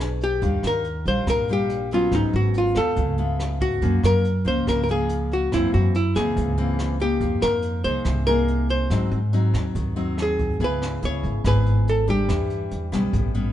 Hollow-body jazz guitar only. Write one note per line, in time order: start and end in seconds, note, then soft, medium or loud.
0.00 0.25 G#4 medium
0.24 0.66 G4 medium
0.67 1.07 A#4 medium
1.08 1.29 C5 medium
1.30 1.50 A#4 medium
1.53 1.94 G4 medium
1.94 2.14 F4 medium
2.15 2.33 D#4 medium
2.36 2.56 F#4 medium
2.58 2.78 F4 medium
2.77 3.64 A4 medium
3.62 4.01 F#4 medium
4.05 4.47 A#4 medium
4.48 4.68 C5 medium
4.69 4.82 A#4 medium
4.84 4.89 A#4 medium
4.91 5.33 G#4 medium
5.33 5.53 F#4 medium
5.54 5.73 E4 medium
5.74 5.95 F#4 medium
5.96 6.17 E4 medium
6.16 7.03 G#4 medium
7.02 7.44 G4 medium
7.42 7.84 A#4 medium
7.84 8.26 C5 medium
8.27 8.70 A#4 medium
8.70 10.14 C5 medium
10.22 10.63 G#4 medium
10.64 11.05 B4 medium
11.05 11.47 C#5 medium
11.47 11.89 B4 medium
11.89 12.10 A4 medium
12.10 13.53 G4 medium